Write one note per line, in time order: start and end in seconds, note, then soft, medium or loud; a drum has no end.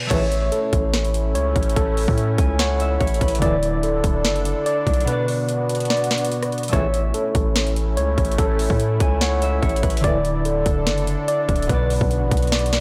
0.00 0.16 B2 medium
0.00 1.55 B3 medium
0.00 0.91 F#4 medium
0.00 0.11 B4 loud
0.00 0.17 D5 medium
0.00 reverse cymbal medium
0.07 3.40 A3 medium
0.07 3.37 A4 medium
0.07 1.34 C#5 loud
0.11 0.51 A1 loud
0.11 0.24 C#2 loud
0.11 0.24 A2 loud
0.11 0.24 E3 loud
0.11 3.39 A3 medium
0.11 3.39 C#4 medium
0.11 5.03 E4 medium
0.11 2.99 C#5 medium
0.11 2.80 E5 medium
0.11 kick loud
0.11 closed hi-hat medium
0.11 crash loud
0.32 closed hi-hat medium
0.52 1.75 A4 medium
0.52 closed hi-hat medium
0.73 1.36 A1 loud
0.73 kick loud
0.73 closed hi-hat medium
0.94 snare loud
0.94 closed hi-hat medium
1.05 closed hi-hat soft
1.14 closed hi-hat medium
1.35 1.55 C#2 loud
1.35 2.58 C#5 loud
1.35 closed hi-hat medium
1.56 1.76 A1 loud
1.56 kick medium
1.56 closed hi-hat medium
1.63 closed hi-hat medium
1.70 closed hi-hat medium
1.76 2.07 A1 loud
1.76 3.42 A4 loud
1.76 kick loud
1.76 closed hi-hat medium
1.97 open hi-hat medium
2.08 2.37 A2 loud
2.08 kick medium
2.18 closed hi-hat medium
2.38 2.98 C#2 loud
2.38 3.47 G#5 medium
2.38 kick loud
2.38 closed hi-hat medium
2.59 3.42 C#5 loud
2.59 4.20 F#5 medium
2.59 snare loud
2.59 closed hi-hat medium
2.80 4.53 E5 medium
2.80 closed hi-hat medium
3.00 3.20 A1 loud
3.00 3.44 C#5 medium
3.00 kick medium
3.00 closed hi-hat medium
3.07 closed hi-hat medium
3.14 closed hi-hat medium
3.20 3.41 A1 loud
3.20 5.25 B4 medium
3.20 kick medium
3.20 closed hi-hat medium
3.28 closed hi-hat medium
3.35 5.12 D3 medium
3.35 closed hi-hat medium
3.41 4.01 D1 loud
3.41 3.55 A2 loud
3.41 5.06 D3 medium
3.41 3.55 E3 loud
3.41 6.68 A3 medium
3.41 6.70 D4 medium
3.41 6.04 E4 medium
3.41 5.06 A4 medium
3.41 4.65 D5 loud
3.41 kick loud
3.41 closed hi-hat medium
3.45 5.11 D5 medium
3.63 closed hi-hat medium
3.83 5.07 A4 medium
3.83 closed hi-hat medium
4.04 4.26 D1 loud
4.04 kick loud
4.04 closed hi-hat medium
4.25 4.55 F#1 loud
4.25 snare loud
4.25 closed hi-hat medium
4.36 closed hi-hat soft
4.45 closed hi-hat medium
4.66 5.07 D5 medium
4.66 closed hi-hat medium
4.87 5.07 B1 loud
4.87 kick medium
4.87 closed hi-hat medium
4.94 closed hi-hat medium
5.00 closed hi-hat medium
5.05 6.78 B2 medium
5.05 8.18 B3 medium
5.05 6.71 B3 medium
5.05 6.71 F#4 medium
5.05 6.73 B4 loud
5.05 closed hi-hat medium
5.09 7.53 F#4 medium
5.09 6.80 D5 medium
5.28 open hi-hat medium
5.49 closed hi-hat medium
5.69 closed hi-hat medium
5.75 closed hi-hat medium
5.80 closed hi-hat medium
5.85 closed hi-hat soft
5.90 6.73 D5 loud
5.90 snare loud
5.90 closed hi-hat soft
5.97 closed hi-hat medium
6.04 closed hi-hat medium
6.11 snare medium
6.11 closed hi-hat medium
6.18 closed hi-hat medium
6.25 closed hi-hat medium
6.32 closed hi-hat medium
6.43 cross-stick medium
6.43 closed hi-hat medium
6.52 closed hi-hat soft
6.58 closed hi-hat medium
6.63 closed hi-hat medium
6.68 10.02 A3 medium
6.68 9.99 A4 medium
6.68 closed hi-hat medium
6.73 7.13 A1 loud
6.73 6.86 C#2 loud
6.73 6.86 A2 loud
6.73 6.86 E3 loud
6.73 10.01 A3 medium
6.73 10.01 C#4 medium
6.73 11.65 E4 medium
6.73 7.96 C#5 loud
6.73 9.61 C#5 medium
6.73 9.42 E5 medium
6.73 kick loud
6.73 closed hi-hat medium
6.94 closed hi-hat medium
7.14 8.37 A4 medium
7.14 closed hi-hat medium
7.35 7.99 A1 loud
7.35 kick loud
7.35 closed hi-hat medium
7.56 snare loud
7.56 closed hi-hat medium
7.67 closed hi-hat soft
7.76 closed hi-hat medium
7.97 8.17 C#2 loud
7.97 9.20 C#5 medium
7.97 closed hi-hat medium
8.18 8.38 A1 loud
8.18 kick medium
8.18 closed hi-hat medium
8.25 closed hi-hat medium
8.32 closed hi-hat medium
8.38 8.69 A1 loud
8.38 10.04 A4 loud
8.38 kick loud
8.38 closed hi-hat medium
8.59 open hi-hat medium
8.70 8.99 A2 loud
8.70 kick medium
8.80 closed hi-hat medium
9.00 9.60 C#2 loud
9.00 10.09 G#5 medium
9.00 kick loud
9.00 closed hi-hat medium
9.21 10.04 C#5 loud
9.21 10.82 F#5 medium
9.21 snare loud
9.21 closed hi-hat medium
9.42 11.15 E5 medium
9.42 closed hi-hat medium
9.62 9.82 A1 loud
9.62 10.06 C#5 medium
9.62 kick medium
9.62 closed hi-hat medium
9.69 closed hi-hat medium
9.76 closed hi-hat medium
9.82 10.03 A1 loud
9.82 11.87 B4 medium
9.82 kick medium
9.82 closed hi-hat medium
9.90 closed hi-hat medium
9.97 11.74 D3 medium
9.97 closed hi-hat medium
10.03 10.64 D1 loud
10.03 10.17 A2 loud
10.03 11.68 D3 medium
10.03 10.17 E3 loud
10.03 12.80 A3 medium
10.03 12.80 D4 medium
10.03 12.66 E4 medium
10.03 11.68 A4 medium
10.03 11.27 D5 loud
10.03 kick loud
10.03 closed hi-hat medium
10.07 11.73 D5 medium
10.25 closed hi-hat medium
10.45 11.69 A4 medium
10.45 closed hi-hat medium
10.66 10.88 D1 loud
10.66 kick loud
10.66 closed hi-hat medium
10.87 11.17 F#1 loud
10.87 snare loud
10.87 closed hi-hat medium
10.98 closed hi-hat soft
11.07 closed hi-hat medium
11.28 11.69 D5 medium
11.28 closed hi-hat medium
11.49 11.69 D1 loud
11.49 kick medium
11.49 closed hi-hat medium
11.56 closed hi-hat medium
11.62 closed hi-hat medium
11.67 12.00 B1 loud
11.67 12.80 B2 medium
11.67 12.80 B3 medium
11.67 12.80 F#4 medium
11.67 12.80 B4 loud
11.67 kick loud
11.67 closed hi-hat medium
11.71 12.80 F#4 medium
11.71 12.80 D5 medium
11.90 open hi-hat medium
12.01 12.23 B1 loud
12.01 kick loud
12.11 closed hi-hat medium
12.22 12.31 A1 loud
12.31 12.80 B1 loud
12.31 kick loud
12.31 closed hi-hat medium
12.37 closed hi-hat medium
12.43 closed hi-hat medium
12.47 closed hi-hat soft
12.52 12.80 D5 medium
12.52 snare loud
12.52 closed hi-hat soft
12.59 closed hi-hat medium
12.66 closed hi-hat medium
12.73 snare medium
12.73 closed hi-hat medium